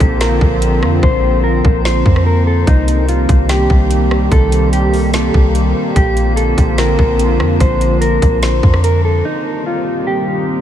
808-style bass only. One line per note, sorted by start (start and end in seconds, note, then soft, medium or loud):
0.00 0.40 A#1 loud
0.41 0.84 A#1 loud
0.82 1.02 F2 loud
1.03 1.62 A#1 loud
1.65 2.04 A#1 loud
2.06 2.65 F2 loud
2.67 3.26 C2 loud
3.29 3.68 C2 loud
3.70 4.29 C2 loud
4.32 5.30 C2 loud
5.34 5.74 C2 loud
5.96 6.55 A#1 loud
6.58 6.97 A#1 loud
6.99 7.41 A#1 loud
7.40 7.59 F2 loud
7.60 8.20 A#1 loud
8.22 8.62 A#1 loud
8.63 9.22 F2 loud